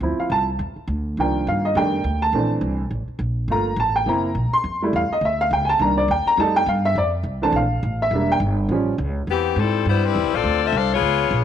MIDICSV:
0, 0, Header, 1, 5, 480
1, 0, Start_track
1, 0, Key_signature, -1, "minor"
1, 0, Tempo, 289715
1, 31, Time_signature, 4, 2, 24, 8
1, 18957, End_track
2, 0, Start_track
2, 0, Title_t, "Saxophone section"
2, 0, Program_c, 0, 65
2, 15412, Note_on_c, 0, 59, 76
2, 15414, Note_on_c, 0, 52, 72
2, 15415, Note_on_c, 0, 60, 74
2, 15418, Note_on_c, 0, 67, 92
2, 15849, Note_off_c, 0, 52, 0
2, 15849, Note_off_c, 0, 59, 0
2, 15850, Note_off_c, 0, 60, 0
2, 15852, Note_off_c, 0, 67, 0
2, 15888, Note_on_c, 0, 64, 75
2, 15894, Note_on_c, 0, 69, 84
2, 15895, Note_on_c, 0, 60, 69
2, 15897, Note_on_c, 0, 55, 72
2, 16356, Note_off_c, 0, 64, 0
2, 16362, Note_off_c, 0, 69, 0
2, 16363, Note_off_c, 0, 60, 0
2, 16364, Note_off_c, 0, 55, 0
2, 16376, Note_on_c, 0, 64, 78
2, 16383, Note_on_c, 0, 72, 85
2, 16387, Note_on_c, 0, 55, 78
2, 16388, Note_on_c, 0, 59, 77
2, 16630, Note_off_c, 0, 64, 0
2, 16634, Note_off_c, 0, 72, 0
2, 16636, Note_off_c, 0, 55, 0
2, 16636, Note_off_c, 0, 59, 0
2, 16654, Note_on_c, 0, 60, 89
2, 16659, Note_on_c, 0, 55, 88
2, 16661, Note_on_c, 0, 64, 88
2, 16661, Note_on_c, 0, 71, 93
2, 17126, Note_off_c, 0, 60, 0
2, 17129, Note_off_c, 0, 55, 0
2, 17129, Note_off_c, 0, 71, 0
2, 17130, Note_off_c, 0, 64, 0
2, 17151, Note_on_c, 0, 60, 88
2, 17153, Note_on_c, 0, 74, 103
2, 17155, Note_on_c, 0, 65, 88
2, 17156, Note_on_c, 0, 69, 90
2, 17600, Note_off_c, 0, 60, 0
2, 17600, Note_off_c, 0, 65, 0
2, 17616, Note_off_c, 0, 74, 0
2, 17618, Note_off_c, 0, 69, 0
2, 17619, Note_on_c, 0, 65, 82
2, 17620, Note_on_c, 0, 60, 89
2, 17629, Note_on_c, 0, 76, 92
2, 17637, Note_on_c, 0, 69, 82
2, 17804, Note_off_c, 0, 60, 0
2, 17804, Note_off_c, 0, 65, 0
2, 17809, Note_off_c, 0, 69, 0
2, 17809, Note_off_c, 0, 76, 0
2, 17827, Note_on_c, 0, 77, 92
2, 17829, Note_on_c, 0, 62, 82
2, 17829, Note_on_c, 0, 69, 85
2, 17834, Note_on_c, 0, 72, 82
2, 18096, Note_off_c, 0, 77, 0
2, 18097, Note_off_c, 0, 62, 0
2, 18097, Note_off_c, 0, 69, 0
2, 18100, Note_off_c, 0, 72, 0
2, 18118, Note_on_c, 0, 73, 99
2, 18120, Note_on_c, 0, 59, 86
2, 18120, Note_on_c, 0, 65, 88
2, 18120, Note_on_c, 0, 68, 85
2, 18957, Note_off_c, 0, 59, 0
2, 18957, Note_off_c, 0, 65, 0
2, 18957, Note_off_c, 0, 68, 0
2, 18957, Note_off_c, 0, 73, 0
2, 18957, End_track
3, 0, Start_track
3, 0, Title_t, "Upright piano"
3, 0, Program_c, 1, 0
3, 33, Note_on_c, 1, 53, 43
3, 47, Note_on_c, 1, 60, 41
3, 52, Note_on_c, 1, 64, 51
3, 326, Note_on_c, 1, 77, 59
3, 511, Note_off_c, 1, 77, 0
3, 524, Note_on_c, 1, 81, 82
3, 692, Note_off_c, 1, 81, 0
3, 760, Note_off_c, 1, 53, 0
3, 767, Note_off_c, 1, 60, 0
3, 770, Note_off_c, 1, 64, 0
3, 1966, Note_on_c, 1, 51, 48
3, 1978, Note_on_c, 1, 53, 40
3, 1983, Note_on_c, 1, 58, 42
3, 1988, Note_on_c, 1, 79, 62
3, 1991, Note_on_c, 1, 62, 49
3, 2418, Note_off_c, 1, 79, 0
3, 2460, Note_on_c, 1, 77, 75
3, 2723, Note_off_c, 1, 77, 0
3, 2736, Note_on_c, 1, 75, 72
3, 2871, Note_off_c, 1, 51, 0
3, 2878, Note_off_c, 1, 53, 0
3, 2880, Note_off_c, 1, 58, 0
3, 2884, Note_off_c, 1, 62, 0
3, 2909, Note_on_c, 1, 51, 53
3, 2916, Note_off_c, 1, 75, 0
3, 2918, Note_on_c, 1, 55, 49
3, 2919, Note_on_c, 1, 57, 45
3, 2931, Note_on_c, 1, 62, 59
3, 2931, Note_on_c, 1, 79, 80
3, 3255, Note_off_c, 1, 51, 0
3, 3260, Note_off_c, 1, 55, 0
3, 3260, Note_off_c, 1, 57, 0
3, 3267, Note_off_c, 1, 62, 0
3, 3633, Note_off_c, 1, 79, 0
3, 3682, Note_on_c, 1, 81, 84
3, 3874, Note_on_c, 1, 52, 48
3, 3879, Note_on_c, 1, 57, 44
3, 3886, Note_on_c, 1, 60, 41
3, 3895, Note_on_c, 1, 62, 53
3, 4126, Note_off_c, 1, 81, 0
3, 4599, Note_off_c, 1, 52, 0
3, 4601, Note_off_c, 1, 57, 0
3, 4605, Note_off_c, 1, 60, 0
3, 4610, Note_off_c, 1, 62, 0
3, 5802, Note_on_c, 1, 57, 51
3, 5811, Note_on_c, 1, 58, 41
3, 5815, Note_on_c, 1, 65, 54
3, 5827, Note_on_c, 1, 82, 78
3, 6141, Note_off_c, 1, 57, 0
3, 6145, Note_off_c, 1, 58, 0
3, 6147, Note_off_c, 1, 65, 0
3, 6255, Note_off_c, 1, 82, 0
3, 6292, Note_on_c, 1, 81, 79
3, 6556, Note_on_c, 1, 79, 78
3, 6557, Note_off_c, 1, 81, 0
3, 6744, Note_off_c, 1, 79, 0
3, 6746, Note_on_c, 1, 58, 50
3, 6750, Note_on_c, 1, 60, 46
3, 6767, Note_on_c, 1, 64, 58
3, 6769, Note_on_c, 1, 82, 71
3, 7091, Note_off_c, 1, 58, 0
3, 7093, Note_off_c, 1, 60, 0
3, 7102, Note_off_c, 1, 64, 0
3, 7470, Note_off_c, 1, 82, 0
3, 7512, Note_on_c, 1, 84, 82
3, 7958, Note_off_c, 1, 84, 0
3, 7992, Note_on_c, 1, 55, 52
3, 8010, Note_on_c, 1, 57, 50
3, 8011, Note_on_c, 1, 64, 57
3, 8213, Note_on_c, 1, 77, 80
3, 8285, Note_off_c, 1, 55, 0
3, 8295, Note_off_c, 1, 57, 0
3, 8295, Note_off_c, 1, 64, 0
3, 8477, Note_off_c, 1, 77, 0
3, 8492, Note_on_c, 1, 75, 74
3, 8671, Note_off_c, 1, 75, 0
3, 8702, Note_on_c, 1, 76, 75
3, 8961, Note_off_c, 1, 76, 0
3, 8962, Note_on_c, 1, 77, 87
3, 9146, Note_off_c, 1, 77, 0
3, 9161, Note_on_c, 1, 79, 73
3, 9360, Note_on_c, 1, 80, 65
3, 9393, Note_off_c, 1, 80, 0
3, 9430, Note_off_c, 1, 79, 0
3, 9433, Note_on_c, 1, 81, 91
3, 9612, Note_on_c, 1, 51, 46
3, 9621, Note_off_c, 1, 81, 0
3, 9622, Note_on_c, 1, 58, 40
3, 9636, Note_on_c, 1, 62, 52
3, 9636, Note_on_c, 1, 82, 75
3, 9899, Note_on_c, 1, 74, 65
3, 9907, Note_off_c, 1, 82, 0
3, 9963, Note_off_c, 1, 51, 0
3, 9968, Note_off_c, 1, 58, 0
3, 9976, Note_off_c, 1, 62, 0
3, 10093, Note_off_c, 1, 74, 0
3, 10119, Note_on_c, 1, 79, 77
3, 10389, Note_off_c, 1, 79, 0
3, 10393, Note_on_c, 1, 82, 91
3, 10571, Note_on_c, 1, 55, 56
3, 10580, Note_off_c, 1, 82, 0
3, 10582, Note_on_c, 1, 57, 48
3, 10592, Note_on_c, 1, 63, 59
3, 10599, Note_on_c, 1, 81, 85
3, 10869, Note_off_c, 1, 81, 0
3, 10873, Note_on_c, 1, 79, 92
3, 10923, Note_off_c, 1, 55, 0
3, 10928, Note_off_c, 1, 57, 0
3, 10933, Note_off_c, 1, 63, 0
3, 11060, Note_off_c, 1, 79, 0
3, 11077, Note_on_c, 1, 77, 74
3, 11348, Note_off_c, 1, 77, 0
3, 11355, Note_on_c, 1, 76, 86
3, 11542, Note_off_c, 1, 76, 0
3, 11559, Note_on_c, 1, 74, 68
3, 11726, Note_off_c, 1, 74, 0
3, 12291, Note_on_c, 1, 52, 50
3, 12297, Note_on_c, 1, 57, 47
3, 12303, Note_on_c, 1, 60, 46
3, 12312, Note_on_c, 1, 81, 82
3, 12313, Note_on_c, 1, 62, 56
3, 12500, Note_off_c, 1, 81, 0
3, 12526, Note_on_c, 1, 77, 72
3, 12594, Note_off_c, 1, 52, 0
3, 12597, Note_off_c, 1, 57, 0
3, 12600, Note_off_c, 1, 60, 0
3, 12606, Note_off_c, 1, 62, 0
3, 13229, Note_off_c, 1, 77, 0
3, 13291, Note_on_c, 1, 76, 84
3, 13474, Note_on_c, 1, 55, 50
3, 13491, Note_on_c, 1, 58, 46
3, 13499, Note_on_c, 1, 62, 57
3, 13729, Note_off_c, 1, 76, 0
3, 13779, Note_on_c, 1, 79, 87
3, 13816, Note_off_c, 1, 55, 0
3, 13824, Note_off_c, 1, 58, 0
3, 13829, Note_off_c, 1, 62, 0
3, 13888, Note_off_c, 1, 79, 0
3, 14425, Note_on_c, 1, 53, 57
3, 14436, Note_on_c, 1, 55, 50
3, 14450, Note_on_c, 1, 61, 59
3, 14772, Note_off_c, 1, 53, 0
3, 14777, Note_off_c, 1, 55, 0
3, 14785, Note_off_c, 1, 61, 0
3, 18957, End_track
4, 0, Start_track
4, 0, Title_t, "Upright bass"
4, 0, Program_c, 2, 32
4, 7, Note_on_c, 2, 38, 86
4, 284, Note_off_c, 2, 38, 0
4, 493, Note_on_c, 2, 36, 89
4, 968, Note_off_c, 2, 36, 0
4, 976, Note_on_c, 2, 40, 91
4, 1249, Note_off_c, 2, 40, 0
4, 1450, Note_on_c, 2, 38, 98
4, 1927, Note_off_c, 2, 38, 0
4, 1942, Note_on_c, 2, 36, 87
4, 2413, Note_off_c, 2, 36, 0
4, 2435, Note_on_c, 2, 43, 93
4, 2892, Note_off_c, 2, 43, 0
4, 2902, Note_on_c, 2, 41, 97
4, 3372, Note_off_c, 2, 41, 0
4, 3382, Note_on_c, 2, 38, 101
4, 3845, Note_off_c, 2, 38, 0
4, 3855, Note_on_c, 2, 34, 90
4, 4316, Note_off_c, 2, 34, 0
4, 4326, Note_on_c, 2, 36, 98
4, 4803, Note_off_c, 2, 36, 0
4, 4814, Note_on_c, 2, 33, 86
4, 5087, Note_off_c, 2, 33, 0
4, 5281, Note_on_c, 2, 34, 96
4, 5754, Note_off_c, 2, 34, 0
4, 5764, Note_on_c, 2, 31, 93
4, 6225, Note_off_c, 2, 31, 0
4, 6235, Note_on_c, 2, 33, 102
4, 6716, Note_off_c, 2, 33, 0
4, 6727, Note_on_c, 2, 30, 86
4, 7192, Note_off_c, 2, 30, 0
4, 7202, Note_on_c, 2, 34, 92
4, 7479, Note_off_c, 2, 34, 0
4, 7684, Note_on_c, 2, 41, 94
4, 8160, Note_off_c, 2, 41, 0
4, 8168, Note_on_c, 2, 40, 98
4, 8442, Note_off_c, 2, 40, 0
4, 8634, Note_on_c, 2, 38, 91
4, 9115, Note_off_c, 2, 38, 0
4, 9123, Note_on_c, 2, 37, 95
4, 9590, Note_off_c, 2, 37, 0
4, 9600, Note_on_c, 2, 36, 98
4, 10062, Note_off_c, 2, 36, 0
4, 10072, Note_on_c, 2, 39, 93
4, 10353, Note_off_c, 2, 39, 0
4, 10558, Note_on_c, 2, 41, 95
4, 11027, Note_off_c, 2, 41, 0
4, 11037, Note_on_c, 2, 43, 96
4, 11507, Note_off_c, 2, 43, 0
4, 11517, Note_on_c, 2, 41, 93
4, 11975, Note_off_c, 2, 41, 0
4, 11985, Note_on_c, 2, 36, 101
4, 12455, Note_off_c, 2, 36, 0
4, 12465, Note_on_c, 2, 34, 98
4, 12951, Note_off_c, 2, 34, 0
4, 12968, Note_on_c, 2, 33, 99
4, 13423, Note_off_c, 2, 33, 0
4, 13433, Note_on_c, 2, 28, 93
4, 13906, Note_off_c, 2, 28, 0
4, 13916, Note_on_c, 2, 31, 103
4, 14382, Note_off_c, 2, 31, 0
4, 14392, Note_on_c, 2, 33, 98
4, 14875, Note_off_c, 2, 33, 0
4, 14883, Note_on_c, 2, 37, 106
4, 15351, Note_off_c, 2, 37, 0
4, 15361, Note_on_c, 2, 40, 90
4, 15828, Note_off_c, 2, 40, 0
4, 15838, Note_on_c, 2, 44, 101
4, 16316, Note_off_c, 2, 44, 0
4, 16326, Note_on_c, 2, 43, 97
4, 16804, Note_off_c, 2, 43, 0
4, 16818, Note_on_c, 2, 40, 103
4, 16969, Note_off_c, 2, 40, 0
4, 16969, Note_on_c, 2, 36, 57
4, 17120, Note_off_c, 2, 36, 0
4, 17130, Note_on_c, 2, 33, 69
4, 17280, Note_off_c, 2, 33, 0
4, 17290, Note_on_c, 2, 38, 98
4, 17758, Note_off_c, 2, 38, 0
4, 17768, Note_on_c, 2, 36, 103
4, 18232, Note_off_c, 2, 36, 0
4, 18242, Note_on_c, 2, 37, 94
4, 18725, Note_off_c, 2, 37, 0
4, 18733, Note_on_c, 2, 34, 101
4, 18957, Note_off_c, 2, 34, 0
4, 18957, End_track
5, 0, Start_track
5, 0, Title_t, "Muted upright bass strokes"
5, 310, Note_on_c, 9, 29, 40
5, 476, Note_off_c, 9, 29, 0
5, 1261, Note_on_c, 9, 29, 43
5, 1427, Note_off_c, 9, 29, 0
5, 5098, Note_on_c, 9, 29, 41
5, 5264, Note_off_c, 9, 29, 0
5, 7494, Note_on_c, 9, 29, 38
5, 7660, Note_off_c, 9, 29, 0
5, 8450, Note_on_c, 9, 29, 43
5, 8616, Note_off_c, 9, 29, 0
5, 10367, Note_on_c, 9, 29, 48
5, 10533, Note_off_c, 9, 29, 0
5, 18957, End_track
0, 0, End_of_file